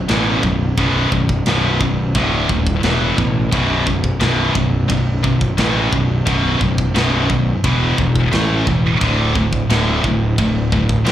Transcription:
0.08 A1 B1 F#2 B2, snare, ride bell
0.43 B0 B1 F#2, kick
0.77 B0 B1 F#2 B2, kick, ride bell
1.11 B0 B1 F#2, kick
1.29 kick
1.46 B0 B1 F#2 B2, snare, ride bell
1.81 B1 F#2, kick
2.15 D1 D2 A2 D3, kick, ride bell
2.49 D#1 D2 A2, kick
2.67 kick
2.83 E1 E2 B2 E3, snare, ride bell
3.17 A1 E2 B2, kick
3.52 B0 B1 F#2 B2, kick, ride bell
3.86 B1 F#2, kick
4.04 kick
4.20 B0 B1 F#2 B2, snare, ride bell
4.55 B0 B1 F#2, kick
4.88 B0 B1 F#2, kick, ride bell
5.23 B1 F#2, kick
5.41 kick
5.57 A1 B1 F#2 B2, snare, ride bell
5.91 B0 B1 F#2, kick
6.26 B0 B1 F#2 B2, kick, ride bell
6.60 B0 B1 F#2, kick
6.78 kick
6.95 B0 B1 F#2 B2, snare, ride bell
7.28 B1 F#2, kick
7.64 E1 E2 B2 E3, kick, ride bell
7.98 E1 E2 B2, kick
8.16 kick
8.31 A1 A2 E3 A3, snare, ride bell
8.66 E1 A2 E3, kick
9.01 D1 D2 A2 D3, kick, ride bell
9.35 D2 A2, kick
9.53 kick
9.69 D1 D2 A2 D3, snare, ride bell
10.04 D1 D2 A2, kick
10.38 D1 D2 A2, kick, ride bell
10.72 D2 A2, kick
10.89 kick
11.05 B1 D2 A2 D3, snare, ride bell

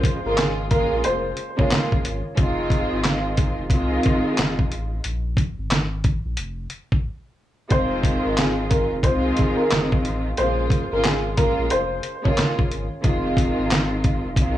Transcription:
Already playing: A#1 C#3 G#3 A#3 F4 C5
0.04 kick, closed hi-hat
0.23 G#1 C#3 G#3 A#3 F4 A#4
0.37 G#4, snare, clap, closed hi-hat
0.70 C#3 G#3 A#3 F4 A#4, kick, closed hi-hat
0.92 A#1
1.04 F1 C5, closed hi-hat
1.37 closed hi-hat
1.57 C#3 G#3 A#3 F4 C#5, kick
1.70 snare, clap, closed hi-hat
1.92 kick
2.05 G#1, closed hi-hat
2.36 F1 D#3 G#3 C4 F4, kick, closed hi-hat
2.70 kick, closed hi-hat
2.92 G#1
3.04 snare, clap, closed hi-hat
3.37 kick, closed hi-hat
3.58 F1
3.70 C2 D#3 G#3 C4 F4, kick, closed hi-hat
4.03 kick, closed hi-hat
4.37 F1, snare, clap, closed hi-hat
4.59 kick
4.72 A1, closed hi-hat
5.04 A#1, closed hi-hat
5.37 kick, closed hi-hat
5.58 G#1
5.71 snare, clap, closed hi-hat
6.04 kick, closed hi-hat
6.25 A#1
6.37 F1, closed hi-hat
6.70 closed hi-hat
6.92 kick
7.69 F1 D#3 G#3 C4 F4 C5, kick, closed hi-hat
8.03 kick, closed hi-hat
8.23 G#1 A#4
8.37 G#4, snare, clap, closed hi-hat
8.70 A#4, kick, closed hi-hat
8.92 F1
9.03 C2 D#3 G#3 C4 F4 C5, kick, closed hi-hat
9.37 kick, closed hi-hat
9.57 A#4
9.70 F1, snare, clap, closed hi-hat
9.92 kick
10.05 A1, closed hi-hat
10.37 A#1 C#3 G#3 A#3 F4 C5, closed hi-hat
10.70 kick, closed hi-hat
10.90 G#1 C#3 G#3 A#3 F4 A#4
11.04 G#4, snare, clap, closed hi-hat
11.37 C#3 G#3 A#3 F4 A#4, kick, closed hi-hat
11.59 A#1
11.70 F1 C5, closed hi-hat
12.03 closed hi-hat
12.24 C#3 G#3 A#3 F4 C#5, kick
12.37 snare, clap, closed hi-hat
12.59 kick
12.71 G#1, closed hi-hat
13.02 F1 D#3 G#3 C4 F4, kick, closed hi-hat
13.37 kick, closed hi-hat
13.58 G#1
13.71 snare, clap, closed hi-hat
14.04 kick, closed hi-hat
14.25 F1
14.36 C2 D#3 G#3 C4 F4, kick, closed hi-hat

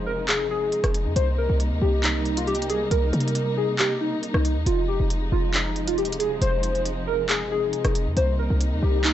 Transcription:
Already playing: F1 C3 F3 G#3 D#4
0.06 A#4
0.28 G#4, clap, closed hi-hat
0.40 G1
0.51 G#4
0.56 F1
0.72 closed hi-hat
0.84 F1, cross-stick, closed hi-hat
0.94 closed hi-hat
1.06 F2
1.16 C2 G3 A#3 C5, closed hi-hat
1.38 A#4
1.50 C2
1.60 closed hi-hat
1.71 D#2
1.82 C2 G4
2.04 D#4, clap, closed hi-hat
2.25 closed hi-hat
2.37 F4, closed hi-hat
2.47 G4, closed hi-hat
2.55 closed hi-hat
2.62 closed hi-hat
2.69 G#4, closed hi-hat
2.91 C2 A#4, closed hi-hat
3.13 C3, closed hi-hat
3.20 closed hi-hat
3.28 closed hi-hat
3.35 closed hi-hat
3.57 G#4
3.79 G4, clap, closed hi-hat
4.01 D#4
4.23 closed hi-hat
4.34 C2, cross-stick
4.45 closed hi-hat
4.56 D#2
4.66 F1 C3 F3 G#3 F4, closed hi-hat
4.88 G4
5.00 F1
5.10 closed hi-hat
5.32 F1 F4
5.54 D#4, clap, closed hi-hat
5.76 closed hi-hat
5.87 D#1 F4, closed hi-hat
5.98 G4, closed hi-hat
6.05 closed hi-hat
6.12 closed hi-hat
6.19 G#4, closed hi-hat
6.42 F1 C5, closed hi-hat
6.63 closed hi-hat, open hi-hat
6.75 closed hi-hat
6.85 closed hi-hat
7.07 A#4
7.29 G#4, clap, closed hi-hat
7.41 G1
7.52 G#4
7.57 F1
7.73 closed hi-hat
7.85 F1, cross-stick, closed hi-hat
7.95 closed hi-hat
8.06 F2
8.17 C2 G3 A#3 D#4 C5, closed hi-hat
8.39 A#4
8.50 C2
8.61 closed hi-hat
8.72 D#2
8.83 C2 G4
9.04 D#4, clap, closed hi-hat

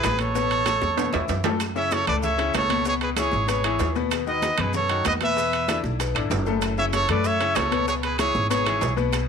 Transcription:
Already playing: G#4 B4
0.03 A1 B3 B4 B5, high bongo, low bongo, high conga, high timbale, low timbale, claves, maracas
0.19 A4 C#5, high conga, high timbale, maracas
0.35 B2 B3 B4, high bongo, high conga, maracas
0.51 high bongo, high conga, high timbale, maracas
0.65 A3 A4 A5, high bongo, high conga, high timbale, low timbale, claves, maracas
0.82 E2, high bongo, high conga, maracas
0.97 B2 B3 B4, high conga, high timbale, maracas
1.13 E2 E3 E4 E5, low bongo, low conga, low timbale, claves, maracas
1.28 F#2, low bongo, low conga, low timbale, maracas
1.44 A2 A3 A4, low bongo, low conga, low timbale, maracas
1.59 high bongo, high conga, high timbale, claves, maracas
1.76 C#3 C#4 E4 C#5 E5, high bongo, high conga, maracas
1.91 A4 C#5, high bongo, high conga, high timbale, low timbale, maracas
2.07 C#2 A2 A3 A4 B4 D5, high bongo, high conga, low conga, high timbale, claves, maracas
2.23 C#5 E5, high bongo, high conga, low conga, maracas
2.38 C#3 C#4 E4, high bongo, high conga, high timbale, maracas
2.54 C#2 A4 C#5, high bongo, low bongo, high conga, high timbale, low timbale, claves, maracas
2.69 B2 B3 B4, high conga, high timbale, maracas
2.85 B2 B3 G#4 B4 C#5, high bongo, high conga, maracas
3.01 G#4 B4, high bongo, high conga, high timbale, maracas
3.17 E3 E4 G#4 C#5, high bongo, high conga, high timbale, low timbale, claves, maracas
3.32 G#1, high bongo, high conga, maracas
3.48 B2 B3 G#4 B4 C#5, high bongo, high conga, high timbale, maracas
3.64 E3 E4 G#4, high conga, high timbale, claves, maracas
3.79 D#2, high bongo, low bongo, high conga, low timbale, maracas
3.95 B2 B3 B4, high bongo, high conga, maracas
4.11 high bongo, high timbale, claves, maracas
4.27 D#3 D#4 F#4 B4 D#5, high bongo, high conga, maracas
4.42 high bongo, high conga, high timbale, low timbale, maracas
4.58 F#2 B2 B3 B4, high bongo, high conga, low conga, high timbale, claves, maracas
4.62 G#4
4.73 A4 C#5, high bongo, high conga, low conga, maracas
4.89 D#3 D#4 F#4, high bongo, high conga, high timbale, maracas
5.05 E2 B4 D#5, high bongo, low bongo, high conga, high timbale, low timbale, claves, maracas
5.21 B2 B3 B4 E5, high conga, high timbale, maracas
5.37 B2 B3 B4, high bongo, high conga, maracas
5.52 high bongo, high conga, high timbale, maracas
5.68 D3 D4 E4, high bongo, high conga, high timbale, low timbale, claves, maracas
5.83 B1, high bongo, high conga, maracas
5.99 B2 B3 B4, high bongo, high conga, high timbale, maracas
6.15 G#1 D3 D4 E4, high conga, high timbale, claves, maracas
6.30 F#1, high bongo, low bongo, high conga, low timbale, maracas
6.46 A2 A3 A4, high bongo, high conga, maracas
6.62 high bongo, high conga, high timbale, claves, maracas
6.78 C#3 C#4 E4 C#5 E5, high bongo, high conga, maracas
6.93 A4 C#5, high bongo, high conga, high timbale, low timbale, maracas
7.09 F#2 A2 A3 A4 B4 D5, high bongo, high conga, low conga, high timbale, claves, maracas
7.24 C#5 E5, high bongo, high conga, maracas
7.40 C#3 C#4 E4, high bongo, high conga, high timbale, maracas
7.55 C#2 A4 C#5, high bongo, low bongo, high conga, high timbale, low timbale, claves, maracas
7.71 B2 B3 B4, high conga, high timbale, maracas
7.87 B2 B3 G#4 B4 C#5, high bongo, high conga, maracas
8.03 G#4 B4, high bongo, high conga, high timbale, maracas
8.18 E3 E4 G#4 C#5, high bongo, high conga, high timbale, low timbale, claves, maracas
8.35 G#1, high bongo, high conga, maracas
8.49 B2 B3 G#4 B4 C#5, high bongo, high timbale, maracas
8.66 E3 E4 G#4, high conga, high timbale, claves, maracas
8.81 B1, high bongo, low bongo, high conga, low timbale, maracas
8.96 B2 B3 B4, high bongo, high conga, maracas
9.13 high bongo, high conga, high timbale, claves, maracas

